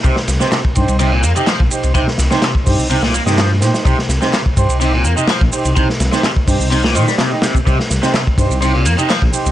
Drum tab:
RD |x-x-x-xxx-xxx-xx|x-x-x---x-x-x-x-|x-x-x-xxx---x-xx|x-x-x---x-x-x-x-|
HH |----------------|------o---------|----------------|------o---------|
SH |x-xxx-xxx-xxx-xx|x-xxx-xxx-xxx-xx|x-xxx-xxx-xxx-xx|x-xxx-xxx-xxx-xx|
CP |----x-------x---|----x-------x---|----x-------x---|----x-------x---|
SD |-oooo-------o---|-oooo----o-oo-oo|-oooo-------o---|-oooo----o-oo-o-|
BD |o----oo------o--|o----oo---------|o----oo------o--|o----oo--------o|

RD |x-x-x-xxx-xxx-xx|
HH |----------------|
SH |x-xxx-xxx-xxx-xx|
CP |----x-------x---|
SD |-oooo-------o---|
BD |o----oo------o--|